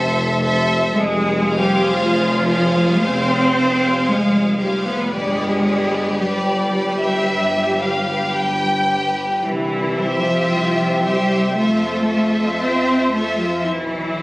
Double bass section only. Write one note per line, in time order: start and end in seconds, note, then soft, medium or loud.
0.00 0.82 F1 medium
0.94 1.82 F1 medium
1.94 2.91 F1 medium
3.04 3.96 F1 medium
4.08 4.98 F1 medium
5.11 6.07 G1 medium
6.20 7.15 G1 medium
7.28 8.22 G1 medium
8.34 9.30 G1 soft
9.43 10.38 C2 medium
10.50 11.44 C2 medium
11.57 12.50 F2 medium
12.62 13.53 F2 soft
13.66 14.22 B1 medium